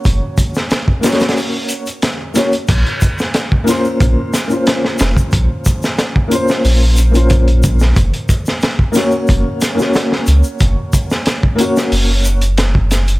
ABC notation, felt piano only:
X:1
M:4/4
L:1/16
Q:1/4=91
K:Bbm
V:1 name="Felt piano"
[B,DGd]6 [B,DGd]4- [B,DGd] z3 [B,DGd] z | z6 [B,DFc]4- [B,DFc] [B,DFc]4- [B,DFc]- | [B,DFc]6 [B,DFc]4- [B,DFc] [B,DFc]4- [B,DFc] | z6 [B,DGd]4- [B,DGd] [B,DGd]4- [B,DGd]- |
[B,DGd]6 [B,DGd]4- [B,DGd] z4 z |]